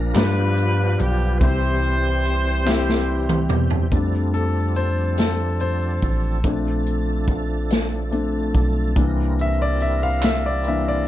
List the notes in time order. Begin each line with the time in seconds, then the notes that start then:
Already playing: A#1 A#2 F3 A#3 D4 F4 A#4
0.14 G2 F3 G3 B3 D4 F4 G4 A#4 B4, snare, clap, closed hi-hat
0.23 B4
0.57 closed hi-hat
0.98 B1 G4, closed hi-hat
1.39 C2 C3 E3 G3 C4 E4 G4 C5, kick, closed hi-hat
1.84 closed hi-hat
2.25 closed hi-hat
2.65 C4 E4 G4, snare, clap
2.89 snare
3.29 mid tom
3.49 E2, mid tom
3.70 floor tom
3.91 F2 F3 G3 A3 C4 D4 A4, kick, closed hi-hat
4.34 A4, closed hi-hat
4.76 C5, closed hi-hat
5.18 A4, snare, closed hi-hat
5.60 C5, closed hi-hat
6.02 A1, kick, closed hi-hat
6.44 A#1 F3 A3 C4 D4 G#4, kick, closed hi-hat
6.53 A4
6.86 closed hi-hat
7.28 kick, closed hi-hat
7.70 snare, closed hi-hat
8.11 A3 C4 D4, closed hi-hat
8.55 B1, kick, closed hi-hat
8.96 C2 E3 G3 A#3 C4 D4 E4 A4, kick, closed hi-hat
9.04 A#4
9.39 E5, closed hi-hat
9.62 D5
9.80 E5, closed hi-hat
10.03 F5
10.22 E5, snare, clap, closed hi-hat
10.46 D5
10.64 E3 A#3 D4, closed hi-hat
10.68 E5
10.88 D5